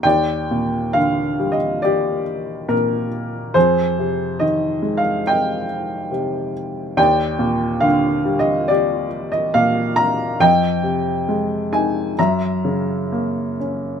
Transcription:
<<
  \new Staff \with { instrumentName = "Upright piano" } { \time 4/4 \key ees \major \tempo 4 = 69 << { g''4 \tuplet 3/2 { f''4 ees''8 } d''4 bes'4 | c''4 \tuplet 3/2 { ees''4 f''8 } g''4. r8 | g''4 \tuplet 3/2 { f''4 ees''8 } d''8. ees''16 f''8 bes''8 | g''4. aes''8 bes''4. r8 | } \\ { d''2 g'2 | aes'2 ees''2 | d''2 g'2 | ees''2 fes''2 | } >> }
  \new Staff \with { instrumentName = "Upright piano" } { \clef bass \time 4/4 \key ees \major ees,8 bes,8 d8 g4. bes,4 | f,8 c8 ees8 aes4. c4 | ees,8 bes,8 d8 g4. bes,4 | f,8 c8 aes8 ees'8 ges,8 des8 bes8 des'8 | }
>>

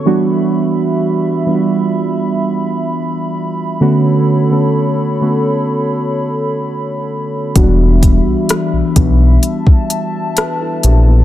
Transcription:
<<
  \new Staff \with { instrumentName = "Analog synth pad" } { \time 4/4 \key e \dorian \tempo 4 = 64 << { b''1~ | b''1~ | b''2 a''2 | } \\ { <g e''>1 | <a' cis''>1 | <g e''>1 | } >> }
  \new Staff \with { instrumentName = "Synth keys" } { \time 4/4 \key e \dorian <e g b d' fis'>4~ <e g b d' fis'>16 r16 <e g b d' f' fis'>4. r4 | <d a b cis' fis'>8 r16 <d a b cis' a'>8 r16 <d a b cis' fis'>4. r4 | <e fis g b d' fis'>4~ <e fis g b d' fis'>16 r16 <e g b d' fis'>4. <fis' b'>16 <e' a'>16 <d' g'>16 <b e'>16 | }
  \new Staff \with { instrumentName = "Analog synth bass" } { \clef bass \time 4/4 \key e \dorian r1 | r1 | e,,8. b,,16 r16 b,,16 b,,8 r4. ais,,8 | }
  \new DrumStaff \with { instrumentName = "Drums" } \drummode { \time 4/4 r4 r4 r4 r4 | r4 r4 r4 r4 | <hh bd>8 <hh bd>8 <hh ss>8 <hh bd>8 hh16 bd16 hh8 <hh ss>8 hh8 | }
>>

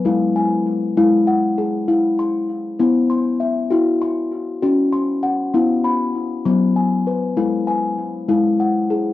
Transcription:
<<
  \new Staff \with { instrumentName = "Steel tongue drum" } { \time 6/8 \key e \major \tempo 4. = 66 << { <b' gis''>8 gis''4. fis''8 gis'8~ | gis'8 c'''4. c'''8 e''8~ | e''8 c'''4. c'''8 fis''8~ | fis''8 b''4. gis''8 b'8~ |
b'8 gis''4. fis''8 gis'8 | } \\ { e'4. e'4. | e'4. b4. | e'4. cis'4. | e'4. fis4. |
e'4. e'4. | } >> }
  \new Staff \with { instrumentName = "Steel tongue drum" } { \time 6/8 \key e \major gis4 r8 gis4 r8 | r4. e'4 r8 | fis'4 r8 fis'4 r8 | b4 r8 b4 r8 |
gis4 r8 gis4 r8 | }
>>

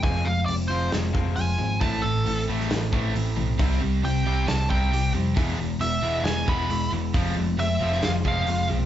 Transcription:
<<
  \new Staff \with { instrumentName = "Lead electric guitar" } { \time 4/4 \key f \lydian \tempo 4 = 135 aes''8 f''8 d''8 c''8 r4 aes''4 | a''8 a'4 r2 r8 | r4 g''4 a''8 g''4 r8 | r4 e''4 gis''8 b''4 r8 |
r4 e''4 f''8 f''4 r8 | }
  \new Staff \with { instrumentName = "Clean electric guitar" } { \time 4/4 \key f \lydian f,4 c'8 f'8 aes8 c'8 f'8 c'8 | a,4 c'8 e'8 a8 c'8 e'8 c'8 | c4 c'8 g'8 g8 c'8 g'8 c'8 | e,4 b8 e'8 gis8 b8 e'8 b8 |
f,4 c'8 f'8 aes8 c'8 f'8 c'8 | }
  \new Staff \with { instrumentName = "Overdriven electric guitar" } { \clef bass \time 4/4 \key f \lydian <f aes c'>8 <f aes>8 <f aes>8 <f aes c'>8 <f aes>8 <f aes c'>8 <f aes>8 <f aes>8 | <a, e a>8 <a, e>8 <a, e>8 <a, e a>8 <a, e>8 <a, e a>8 <a, e>8 <a, e>8 | <c g c'>8 <c g>8 <c g>8 <c g c'>8 <c g>8 <c g c'>8 <c g>8 <c g>8 | <e gis b>8 <e gis>8 <e gis>8 <e gis b>8 <e gis>8 <e gis b>8 <e gis>8 <e gis>8 |
<f aes c'>8 <f aes>8 <f aes>8 <f aes c'>8 <f aes>8 <f aes c'>8 <f aes>8 <f aes>8 | }
  \new Staff \with { instrumentName = "Distorted electric guitar" } { \clef bass \time 4/4 \key f \lydian r1 | <a, e a>8 <a, e>8 <a, e>8 <a, e a>8 <a, e>8 <a, e a>8 <a, e>8 <a, e>8 | <c g c'>8 <c g>8 <c g>8 <c g c'>8 <c g>8 <c g c'>8 <c g>8 <c g>8 | <e, b, e>8 <e, b,>8 <e, b,>8 <e, b, e>8 <e, b,>8 <e, b, e>8 <e, b,>8 <e, b,>8 |
<f, c f>8 <f, c>8 <f, c>8 <f, c f>8 <f, c>8 <f, c f>8 <f, c>8 <f, c>8 | }
  \new Staff \with { instrumentName = "Picked electric bass" } { \clef bass \time 4/4 \key f \lydian f,,8 f,,8 f,,8 f,,8 f,,8 f,,8 f,,8 aes,,8 | a,,8 a,,8 a,,8 a,,8 a,,8 a,,8 a,,8 b,,8 | c,8 c,8 c,8 c,8 c,8 c,8 c,8 f,8 | e,,8 e,,8 e,,8 e,,8 e,,8 e,,8 e,,8 e,,8 |
f,,8 f,,8 f,,8 f,,8 f,,8 f,,8 f,,8 b,,8 | }
  \new DrumStaff \with { instrumentName = "Drums" } \drummode { \time 4/4 <hho bd>4 hho4 <hho sn>8 bd8 hho4 | <hho bd>4 hho8. sn16 <hho sn>8 bd8 hho4 | <hho bd>4 hho4 <hho sn>8 bd8 hho4 | <hho bd>4 hho4 <hho sn>8 bd8 hho4 |
<hho bd>4 hho8. sn16 <hho sn>8 bd8 hho4 | }
>>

